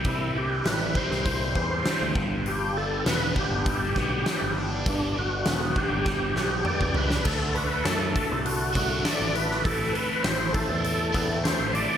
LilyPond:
<<
  \new Staff \with { instrumentName = "Tonewheel organ" } { \time 4/4 \key g \major \tempo 4 = 100 e'8 g'8 b'8 c''2 r8 | g'8 a'8 b'8 g'2 r8 | d'8 fis'4 g'4. d''8 b'8 | a'8 b'8 a'8 a'8 fis'4 d''8 b'8 |
a'8 b'8 c''8 a'8 a'4 c''8 d''8 | }
  \new Staff \with { instrumentName = "Overdriven electric guitar" } { \time 4/4 \key g \major <c e g c'>8 e8 g8 c'8 e8 g8 e8 g,8 | g,8 d8 b8 d'8 g8 b8 g8 d'8 | g,8 d8 b8 d'8 g8 b8 g8 d'8 | <d a d' fis'>2~ <d a d' fis'>8 <d a d' fis'>8 <d a d' fis'>4 |
<a, e a c' e'>2~ <a, e a c' e'>8 <a, e a c' e'>8 <a, e a c' e'>4 | }
  \new Staff \with { instrumentName = "Picked electric bass" } { \clef bass \time 4/4 \key g \major c,4 a,,8 r16 c,8. e,8 r16 d,16 g,,8~ | g,,4 e,,8 r16 g,,8. b,,8 r16 g,,8. | g,,4 e,,8 r16 g,,8. b,,8 r16 cis,8. | d,4 fis,8 r16 c,8. c,8 r16 a,,8. |
a,,8 r8 a,,8. e,8. e,8. a,,8 r16 | }
  \new DrumStaff \with { instrumentName = "Drums" } \drummode { \time 4/4 <hho bd>4 <hho sn>8 bd16 sn16 <hho bd>8 bd8 <hho sn>8 bd8 | hho4 <hho sn>8 bd8 <hho bd>8 <bd sn>8 <hho sn>4 | <hho bd>4 <hho sn>8 bd8 <bd sn>8 sn8 toml16 bd16 tomfh16 sn16 | <cymc bd>8 hho8 <hho sn>8 <hho bd>8 hho8 <hho bd>8 <hho sn>8 hho16 sn16 |
<hho bd>8 hho8 <hho sn>8 <hho bd>8 hho8 <hho bd>8 <hho sn>8 hho8 | }
>>